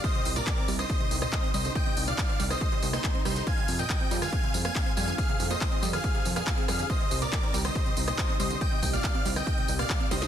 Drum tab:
HH |xxoxxxoxxxoxxxox|xxoxxxoxxxoxxxox|xxoxxxoxxxoxxxox|xxoxxxoxxxoxxxox|
TB |x-xx--xxx-xx--xx|x-xxx-xxx-xxx-xx|x-xxx-xxx-xxx-xx|x-xxx-xxx-xx--xx|
CP |----x-------x---|----x-------x---|----x-------x---|----x-------x---|
SD |-------r---r----|-------r---r--r-|-------r---r----|-------r---r--r-|
BD |o---o---o---o---|o---o---o---o---|o---o---o---o---|o---o---o---o---|

HH |xxoxxxoxxxoxxxox|xxoxxxoxxxoxxxox|
TB |x-xx--xxx-xxx-xx|x-xx--xxx-xx--xx|
CP |----x-------x---|----x-------x---|
SD |-------r---r----|-------r---r--oo|
BD |o---o---o---o---|o-o-o---o---o---|